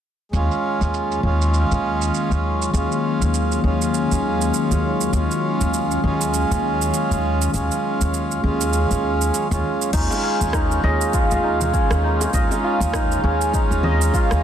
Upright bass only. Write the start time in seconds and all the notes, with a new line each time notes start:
0.33 D#2
0.81 D#2
1.23 D#2
1.71 D#2
2.31 D#2
2.73 D#2
3.21 D#2
3.64 D#2
4.11 D#2
4.71 D#2
5.13 D#2
5.61 D#2
6.04 D#2
6.51 D#2
7.11 D#2
7.54 D#2
8.01 D#2
8.44 D#2
8.91 D#2
9.51 D#2
9.94 D#2
10.41 D#2
10.83 D#2
11.31 D#2
11.90 D#2
12.34 D#2
12.80 D#2
13.24 D#2
13.71 D#2
14.31 D#2